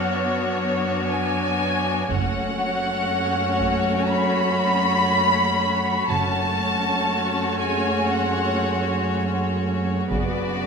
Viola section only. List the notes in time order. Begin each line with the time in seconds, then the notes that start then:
Already playing: B3 D4
2.11 A3 C#4
6.11 A3 C#4
10.12 C#3 B3